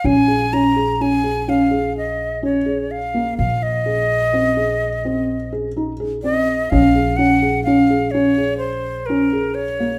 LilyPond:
<<
  \new Staff \with { instrumentName = "Flute" } { \time 7/4 \key bes \minor \tempo 4 = 126 aes''4 bes''4 aes''4 f''4 ees''4 des''4 f''4 | f''8 ees''1 r4. ees''4 | f''4 ges''4 f''4 des''4 c''4 bes'4 des''4 | }
  \new Staff \with { instrumentName = "Felt piano" } { \time 7/4 \key bes \minor des'8 aes'8 des'8 aes'8 des'8 aes'8 des'8 aes'4 r8 des'8 aes'4 bes8~ | bes8 r8 aes'4 c'8 aes'4 c'4 aes'8 ees'8 aes'8 c'4 | des'8 aes'8 des'8 aes'8 des'8 aes'8 des'8 aes'4 r8 des'8 aes'4 bes8 | }
  \new Staff \with { instrumentName = "Upright bass" } { \clef bass \time 7/4 \key bes \minor bes,,1.~ bes,,4 | bes,,1.~ bes,,4 | bes,,1.~ bes,,4 | }
>>